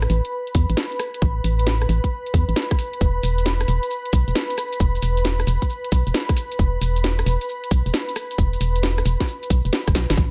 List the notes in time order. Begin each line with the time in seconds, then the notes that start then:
Already playing: B4 B5
0.02 cross-stick, closed hi-hat
0.10 A1, open hi-hat
0.25 closed hi-hat
0.47 closed hi-hat
0.55 E2, kick, open hi-hat
0.70 A1, closed hi-hat
0.77 snare
0.92 closed hi-hat
0.99 cross-stick, open hi-hat
1.14 closed hi-hat
1.22 A1, kick
1.44 A1, open hi-hat
1.59 closed hi-hat
1.67 snare
1.82 cross-stick, closed hi-hat
1.89 A1, open hi-hat
2.04 kick, closed hi-hat
2.26 closed hi-hat
2.34 E2, kick, open hi-hat
2.49 A1, closed hi-hat
2.56 snare
2.71 kick, cross-stick, closed hi-hat
2.79 open hi-hat
2.93 closed hi-hat
3.01 E1, kick, shaker
3.23 E1, open hi-hat, shaker
3.38 closed hi-hat, shaker
3.46 snare, shaker
3.61 cross-stick, closed hi-hat, shaker
3.68 E1, open hi-hat, shaker
3.83 closed hi-hat, shaker
3.91 shaker
4.05 closed hi-hat
4.13 B1, kick, open hi-hat, shaker
4.28 E1, closed hi-hat, shaker
4.35 snare, shaker
4.50 closed hi-hat, shaker
4.58 cross-stick, open hi-hat, shaker
4.73 closed hi-hat, shaker
4.80 E1, kick, shaker
4.95 shaker
5.02 E1, open hi-hat, shaker
5.17 closed hi-hat, shaker
5.25 snare, shaker
5.40 cross-stick, closed hi-hat, shaker
5.47 E1, open hi-hat, shaker
5.62 kick, closed hi-hat, shaker
5.70 shaker
5.84 closed hi-hat
5.92 B1, kick, open hi-hat, shaker
6.07 E1, closed hi-hat, shaker
6.14 snare, shaker
6.29 kick, cross-stick, closed hi-hat, shaker
6.37 open hi-hat, shaker
6.52 closed hi-hat, shaker
6.59 E1, kick, shaker
6.81 E1, open hi-hat, shaker
6.96 closed hi-hat, shaker
7.04 snare, shaker
7.19 cross-stick, closed hi-hat, shaker
7.26 E1, open hi-hat, shaker
7.41 closed hi-hat, shaker
7.49 shaker
7.64 closed hi-hat
7.71 B1, kick, open hi-hat, shaker
7.86 E1, closed hi-hat, shaker
7.94 snare, shaker
8.09 closed hi-hat, shaker
8.16 cross-stick, open hi-hat, shaker
8.31 closed hi-hat, shaker
8.38 E1, kick, shaker
8.53 closed hi-hat, shaker
8.61 E1, open hi-hat, shaker
8.76 closed hi-hat, shaker
8.83 snare, shaker
8.98 cross-stick, closed hi-hat, shaker
9.06 E1, open hi-hat, shaker
9.20 kick, snare, closed hi-hat, shaker
9.28 shaker
9.43 closed hi-hat, shaker
9.50 B1, kick, open hi-hat, shaker
9.65 E1, closed hi-hat, shaker
9.73 snare, shaker
9.88 G1, kick, cross-stick, closed hi-hat, shaker
9.95 B1, snare, open hi-hat, shaker
10.10 G1, snare, open hi-hat, shaker
10.17 A1 B4 B5, kick, shaker